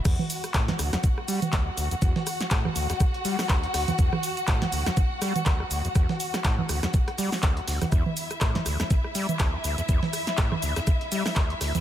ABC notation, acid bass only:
X:1
M:4/4
L:1/16
Q:"Swing 16ths" 1/4=122
K:Em
V:1 name="Acid bass" clef=bass
E,, z3 A,, E,, D,, E,, D,, z G, z D,, E,, D,, E,, | E,, z3 A,, E,, D,, E,, D,, z G, z D,, E,, D,, E,, | E,, z3 A,, E,, D,, E,, D,, z G, z D,, E,, D,, E,, | E,, z3 A,, E,, D,, E,, D,, z G, z D,, E,, D,, E,, |
E,, z3 A,, E,, D,, E,, D,, z G, z D,, E,, D,, E,, | E,, z3 A,, E,, D,, E,, D,, z G, z D,, E,, D,, E,, |]